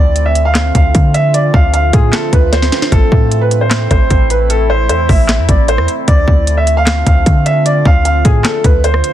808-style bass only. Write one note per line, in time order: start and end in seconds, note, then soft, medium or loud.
0.00 0.72 D2 loud
0.75 0.94 D2 loud
0.95 1.52 D3 loud
1.54 1.92 D2 loud
1.93 2.12 A2 loud
2.33 2.71 D2 loud
2.92 3.11 A1 loud
3.12 3.88 A2 loud
3.91 4.10 A1 loud
4.11 4.91 A1 loud
4.89 5.08 E2 loud
5.09 5.40 A1 loud
5.39 5.48 E2 loud
5.49 5.80 A1 loud
5.78 5.88 E2 loud
6.08 6.27 D2 loud
6.28 7.03 D2 loud
7.07 7.25 D2 loud
7.26 7.83 D3 loud
7.85 8.23 D2 loud
8.25 8.44 A2 loud
8.64 9.02 D2 loud